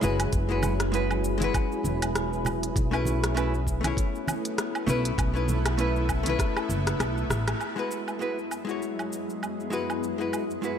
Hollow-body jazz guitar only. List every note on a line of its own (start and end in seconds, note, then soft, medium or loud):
0.01 0.45 G#3 medium
0.01 0.46 E4 medium
0.01 0.46 F#4 medium
0.01 0.47 B4 medium
0.49 0.72 G#3 medium
0.49 0.73 E4 medium
0.49 0.73 F#4 medium
0.49 0.74 B4 medium
0.92 1.36 G#3 medium
0.92 1.37 E4 medium
0.92 1.37 F#4 medium
0.92 1.38 B4 medium
1.38 2.72 G#3 loud
1.38 2.73 E4 medium
1.42 2.74 F#4 medium
1.42 2.75 B4 loud
2.91 3.32 A3 medium
2.91 3.33 C#4 medium
2.91 3.33 E4 medium
2.91 3.34 B4 medium
3.34 3.52 A3 medium
3.34 3.53 C#4 medium
3.34 3.53 E4 medium
3.34 3.54 B4 medium
3.81 4.83 A3 medium
3.81 4.84 C#4 medium
3.85 4.85 E4 medium
3.85 4.86 C#5 medium
4.86 5.30 A3 medium
4.86 5.31 C#4 medium
4.86 5.32 E4 medium
4.86 5.32 B4 loud
5.34 5.57 A3 medium
5.34 5.58 C#4 medium
5.34 5.58 E4 medium
5.34 5.59 B4 medium
5.78 6.21 A3 medium
5.78 6.22 C#4 medium
5.78 6.23 E4 medium
5.78 6.23 B4 medium
6.23 7.58 A3 medium
6.23 7.58 C#4 medium
6.27 7.60 E4 medium
6.27 7.61 B4 loud
7.76 8.17 G#3 medium
7.76 8.17 E4 medium
7.76 8.18 F#4 medium
7.76 8.19 B4 medium
8.19 8.37 G#3 medium
8.19 8.37 E4 medium
8.19 8.38 F#4 medium
8.19 8.38 B4 medium
8.65 9.68 G#3 medium
8.65 9.69 E4 medium
8.69 9.70 F#4 medium
8.69 9.71 C#5 medium
9.70 10.15 G#3 medium
9.70 10.15 E4 medium
9.70 10.16 F#4 medium
9.70 10.16 B4 medium
10.18 10.42 G#3 medium
10.18 10.42 E4 medium
10.18 10.43 F#4 medium
10.18 10.44 B4 medium
10.62 10.79 G#3 medium
10.62 10.79 E4 medium
10.62 10.79 F#4 medium
10.62 10.79 B4 medium